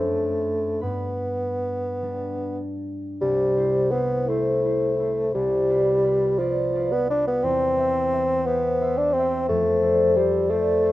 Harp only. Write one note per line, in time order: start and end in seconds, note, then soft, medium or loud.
0.00 0.85 F#2 soft
0.00 0.86 A3 soft
0.00 2.02 D4 soft
0.00 0.84 A4 medium
0.00 0.85 C5 medium
0.00 2.42 D5 medium
0.81 3.24 G2 soft
0.81 3.23 B4 soft
2.02 5.36 G3 soft
2.02 3.24 D4 soft
3.21 5.33 C2 soft
3.56 3.91 E4 soft
3.56 3.91 C5 soft
3.92 4.28 E4 soft
3.92 4.27 C5 soft
4.29 4.64 E4 soft
4.29 4.64 C5 soft
4.65 4.98 E4 soft
4.65 4.99 C5 soft
4.99 5.36 E4 soft
4.99 5.37 C5 soft
5.34 7.46 C2 soft
5.69 6.03 F4 soft
5.69 6.03 B4 soft
5.69 6.03 D5 soft
6.04 6.38 F4 soft
6.04 6.38 B4 soft
6.04 6.39 D5 soft
6.39 6.73 F4 soft
6.39 6.74 B4 soft
6.39 6.74 D5 soft
6.74 7.08 F4 soft
6.74 7.09 B4 soft
6.74 7.09 D5 soft
7.09 7.46 F4 soft
7.09 7.46 B4 soft
7.09 7.46 D5 soft
7.43 9.51 E2 soft
7.77 8.11 G4 soft
7.77 8.12 C5 soft
7.77 8.12 E5 soft
8.12 8.45 G4 soft
8.12 8.46 C5 soft
8.12 8.46 E5 soft
8.46 8.80 G4 soft
8.46 8.80 C5 soft
8.46 8.80 E5 soft
8.81 9.12 G4 soft
8.81 9.14 C5 soft
8.81 9.15 E5 soft
9.13 9.52 G4 soft
9.13 9.81 C5 soft
9.19 9.52 E5 soft
9.49 10.92 F2 soft
9.82 10.14 A4 soft
9.82 10.15 C5 soft
9.82 10.15 D5 soft
10.15 10.48 A4 soft
10.15 10.49 C5 soft
10.15 10.49 D5 soft
10.49 10.82 A4 soft
10.49 10.82 C5 soft
10.49 10.82 D5 soft
10.83 10.92 A4 soft
10.83 10.92 C5 soft
10.83 10.92 D5 soft